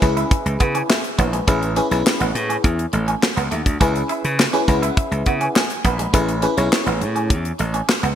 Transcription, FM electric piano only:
0.01 0.90 C#4 medium
0.01 0.89 E4 medium
0.01 0.89 G#4 medium
0.01 0.90 B4 loud
0.89 1.17 G#4 medium
0.89 1.17 E5 medium
1.19 1.33 E4 medium
1.19 1.32 C#5 medium
1.33 1.47 B4 medium
1.47 1.70 C#4 medium
1.47 1.70 E4 medium
1.47 1.70 G#4 medium
1.47 1.70 B4 loud
1.77 1.88 C#4 medium
1.77 1.88 E4 medium
1.77 1.88 G#4 medium
1.77 1.88 B4 loud
1.91 2.79 C#4 medium
1.91 2.79 E4 medium
1.91 2.79 G#4 medium
1.91 2.79 B4 medium
3.81 4.35 C#4 medium
3.81 4.36 E4 medium
3.81 4.36 G#4 medium
3.81 4.36 B4 medium
4.53 4.64 C#4 medium
4.53 4.64 E4 medium
4.53 4.65 G#4 medium
4.53 4.65 B4 loud
4.68 5.56 C#4 medium
4.68 5.56 E4 medium
4.68 5.56 G#4 medium
4.68 5.56 B4 loud
4.68 4.95 F#5 medium
4.97 5.52 E5 medium
5.56 5.83 G#5 medium
5.85 6.12 B5 medium
6.13 6.35 C#4 medium
6.13 6.36 E4 medium
6.13 6.36 G#4 medium
6.13 6.36 B4 loud
6.42 6.54 C#4 medium
6.42 6.54 E4 medium
6.42 6.54 G#4 medium
6.42 6.54 B4 loud
6.57 7.45 C#4 medium
6.57 7.45 E4 medium
6.57 7.45 G#4 medium
6.57 7.45 C#5 loud

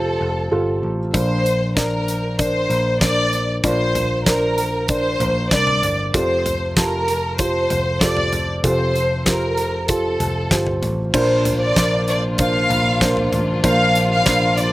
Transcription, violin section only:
0.00 0.83 A4 medium
1.14 1.73 C5 medium
1.76 2.35 A#4 medium
2.39 2.98 C5 medium
3.03 3.49 D5 medium
3.66 4.23 C5 medium
4.27 4.89 A#4 medium
4.91 5.48 C5 medium
5.53 5.99 D5 medium
6.15 6.73 C5 medium
6.78 7.36 A#4 medium
7.40 8.02 C5 medium
8.03 8.49 D5 medium
8.65 9.23 C5 medium
9.28 9.86 A#4 medium
9.90 10.83 A4 medium
11.14 11.57 C5 medium
11.61 12.05 D5 medium
12.08 12.22 D5 medium
12.40 13.29 F5 medium
13.64 14.08 F5 medium
14.12 14.55 F5 medium
14.58 14.72 D5 medium

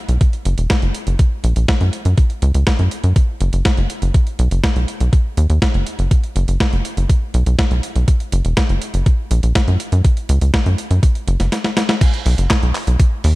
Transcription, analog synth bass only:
0.09 0.18 B1 medium
0.45 0.55 F#1 medium
0.58 0.67 E1 medium
0.82 0.92 F#1 medium
1.07 1.17 F#1 medium
1.44 1.53 A#1 medium
1.56 1.66 A#1 medium
1.81 1.90 F#2 medium
2.05 2.15 F#2 medium
2.42 2.52 C#2 loud
2.55 2.64 C#2 medium
2.79 2.89 F#2 medium
3.04 3.13 F#2 medium
3.41 3.50 F#1 medium
3.53 3.63 F#1 medium
3.77 3.87 F#1 medium
4.02 4.12 F#1 medium
4.39 4.49 B1 medium
4.51 4.61 F#1 medium
4.76 4.85 B1 medium
5.00 5.10 B1 medium
5.37 5.47 D#2 medium
5.50 5.59 D#2 medium
5.74 5.84 F#1 medium
5.99 6.08 F#1 medium
6.36 6.45 F#1 loud
6.48 6.58 F#1 medium
6.73 6.82 F#1 medium
6.97 7.07 F#1 medium
7.34 7.44 B1 medium
7.46 7.56 B1 medium
7.71 7.81 B1 medium
7.96 8.05 B1 medium
8.32 8.42 F#1 medium
8.45 8.54 E1 medium
8.69 8.79 F#1 medium
8.94 9.04 F#1 medium
9.31 9.40 A#1 medium
9.43 9.53 A#1 medium
9.68 9.77 F#2 medium
9.92 10.02 F#2 medium
10.29 10.39 C#2 loud
10.41 10.51 C#2 medium
10.66 10.76 F#2 medium
10.91 11.00 F#2 medium
11.27 11.37 F#1 medium
11.40 11.49 F#1 medium
12.26 12.35 B1 loud
12.38 12.48 F#1 medium
12.63 12.72 B1 medium
12.87 12.97 B1 medium
13.24 13.34 D#2 medium

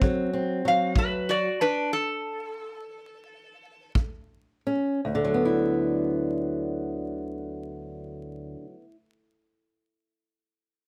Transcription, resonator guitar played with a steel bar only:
0.68 0.99 F5 loud
0.98 1.29 B4 loud
0.98 1.28 E5 loud
1.29 1.58 F#4 medium
1.29 1.60 D5 loud
1.61 1.91 D4 medium
1.61 1.92 B4 loud
1.93 3.92 A4 loud

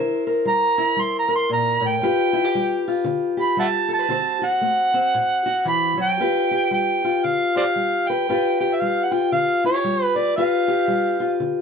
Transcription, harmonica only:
0.48 1.02 A#5 loud
1.01 1.16 C6 loud
1.19 1.34 A#5 medium
1.36 1.51 C6 loud
1.53 1.88 A#5 medium
1.87 2.87 G5 loud
3.41 3.58 B5 loud
3.60 3.68 E5 medium
3.60 3.66 F#5 medium
3.60 3.93 A5 loud
3.94 4.47 A5 loud
4.46 5.63 F#5 loud
5.68 5.97 B5 loud
6.02 6.69 G5 loud
6.73 7.26 G5 medium
7.24 7.55 F5 medium
7.57 7.64 C5 medium
7.57 7.64 D5 medium
7.57 8.09 F5 medium
8.08 8.60 G5 medium
8.60 8.76 G5 medium
8.74 8.82 E5 medium
8.80 9.05 F5 medium
9.04 9.14 F#5 medium
9.13 9.32 G5 medium
9.32 9.62 F5 loud
9.66 10.04 C#5 medium
10.04 10.18 B4 medium
10.17 10.36 D5 medium
10.37 11.37 F5 medium

